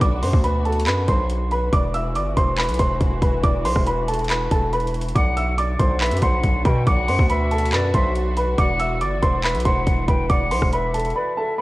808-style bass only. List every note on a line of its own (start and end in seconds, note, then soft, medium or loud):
0.01 0.24 B1 loud
0.22 0.33 F#2 loud
0.33 0.88 D2 loud
0.87 1.07 F#2 loud
1.08 1.70 B1 loud
1.73 2.17 E1 loud
2.15 2.36 G1 loud
2.37 2.70 E1 loud
2.69 2.79 B1 loud
2.80 3.00 E1 loud
3.01 3.22 E1 loud
3.22 3.43 E1 loud
3.44 3.67 E1 loud
3.65 3.76 B1 loud
3.76 4.48 E1 loud
4.51 5.13 E1 loud
5.15 5.77 B1 loud
5.80 6.13 B1 loud
6.12 6.22 F#2 loud
6.22 6.43 B1 loud
6.44 6.65 B1 loud
6.65 6.86 B2 loud
6.87 7.10 B1 loud
7.08 7.18 F#2 loud
7.19 7.74 D2 loud
7.72 7.93 F#2 loud
7.94 8.56 B1 loud
8.58 9.03 E1 loud
9.01 9.21 G1 loud
9.23 9.56 E1 loud
9.55 9.65 B1 loud
9.65 9.86 E1 loud
9.87 10.07 E1 loud
10.08 10.29 E1 loud
10.30 10.53 E1 loud
10.51 10.61 B1 loud
10.62 11.13 E1 loud